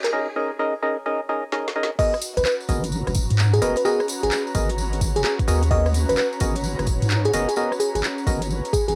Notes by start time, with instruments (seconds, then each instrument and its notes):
Already playing: ambient pad C#4 C#5, analog synth pad D#4 C#5 G#5, riser
0.04 fm electric piano A#4, clap, closed hi-hat
0.13 synth stab C#4 D#4 G#4 A#4 D#5
0.36 synth stab C#4 D#4 G#4 A#4 D#5
0.59 synth stab C#4 D#4 G#4 A#4 D#5
0.83 synth stab C#4 D#4 G#4 A#4 D#5
1.06 synth stab C#4 D#4 G#4 A#4 D#5
1.29 synth stab C#4 D#4 G#4 A#4 D#5
1.52 synth stab C#4 D#4 G#4 A#4 D#5, snare
1.68 snare
1.76 synth stab C#4 D#4 G#4 A#4 D#5
1.83 snare
1.99 synth stab B3 F#4 G#4 A#4 D#5, ambient pad C#4 C#5, analog synth pad F#4, fm electric piano D#5, kick, crash, tambourine
2.14 analog synth pad B4, cross-stick, tambourine
2.22 open hi-hat, tambourine
2.37 wobble bass G#1, fm electric piano B4, cross-stick, closed hi-hat, tambourine
2.45 fm electric piano B4, clap, tambourine
2.51 analog synth pad A#5
2.60 tambourine
2.69 wobble bass G#1, synth stab B3 F#4 G#4 A#4 D#5, kick, open hi-hat, tambourine
2.84 closed hi-hat, tambourine
2.92 tambourine
3.07 wobble bass F#1, cross-stick, closed hi-hat, tambourine
3.14 wobble bass D#1, kick, open hi-hat, tambourine
3.30 wobble bass G#2, closed hi-hat, tambourine
3.38 clap, tambourine
3.53 fm electric piano G#4, closed hi-hat, tambourine
3.62 wobble bass F#1, synth stab B3 F#4 G#4 A#4 D#5, fm electric piano B4, open hi-hat, tambourine
3.76 fm electric piano B4, closed hi-hat, tambourine
3.85 synth stab B3 F#4 G#4 A#4 D#5, fm electric piano G#4, tambourine
4.00 cross-stick, tambourine
4.08 open hi-hat, tambourine
4.23 wobble bass G#1, fm electric piano G#4, cross-stick, closed hi-hat, tambourine
4.31 clap, tambourine
4.47 tambourine
4.55 wobble bass G#1, synth stab B3 F#4 G#4 A#4 D#5, kick, open hi-hat, tambourine
4.69 closed hi-hat, tambourine
4.78 tambourine
4.93 closed hi-hat, tambourine
5.01 kick, open hi-hat, tambourine
5.16 wobble bass F#1, fm electric piano G#4, closed hi-hat, tambourine
5.24 fm electric piano G#4, clap, tambourine
5.39 kick, closed hi-hat, tambourine
5.48 wobble bass D#2, synth stab B3 F#4 G#4 A#4 D#5, open hi-hat, tambourine
5.63 closed hi-hat, tambourine
5.71 synth stab B3 F#4 G#4 A#4 D#5, fm electric piano D#5, kick, tambourine
5.86 cross-stick, tambourine
5.94 open hi-hat, tambourine
6.09 wobble bass G#1, fm electric piano B4, cross-stick, closed hi-hat, tambourine
6.17 clap, tambourine
6.33 tambourine
6.40 wobble bass G#1, synth stab B3 F#4 G#4 A#4 D#5, kick, open hi-hat, tambourine
6.55 closed hi-hat, tambourine
6.64 tambourine
6.79 wobble bass F#1, cross-stick, closed hi-hat, tambourine
6.87 wobble bass D#1, kick, open hi-hat, tambourine
7.02 wobble bass G#2, closed hi-hat, tambourine
7.10 clap, tambourine
7.25 fm electric piano G#4, closed hi-hat, tambourine
7.33 wobble bass F#1, synth stab B3 F#4 G#4 A#4 D#5, open hi-hat, tambourine
7.49 fm electric piano G#4, closed hi-hat, tambourine
7.56 synth stab B3 F#4 G#4 A#4 D#5, fm electric piano G#4, tambourine
7.72 cross-stick, tambourine
7.80 fm electric piano G#4, open hi-hat, tambourine
7.95 wobble bass G#1, fm electric piano G#4, cross-stick, closed hi-hat, tambourine
8.04 clap, tambourine
8.18 tambourine
8.27 wobble bass G#1, synth stab B3 F#4 G#4 A#4 D#5, kick, open hi-hat, tambourine
8.42 closed hi-hat, tambourine
8.51 tambourine
8.65 closed hi-hat, tambourine
8.73 fm electric piano G#4, kick, open hi-hat, tambourine
8.88 wobble bass G#1, fm electric piano G#4, closed hi-hat, tambourine